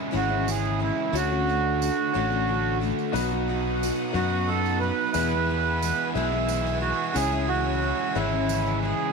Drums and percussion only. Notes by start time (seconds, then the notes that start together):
0.15 tambourine
0.48 tambourine
0.65 tambourine
1.15 tambourine
1.49 tambourine
1.82 tambourine
2.83 tambourine
2.99 tambourine
3.15 tambourine
3.83 tambourine
4.15 tambourine
4.65 tambourine
5.14 tambourine
5.82 tambourine
6.16 tambourine
6.48 tambourine
6.66 tambourine
7.16 tambourine
8.16 tambourine
8.49 tambourine
8.66 tambourine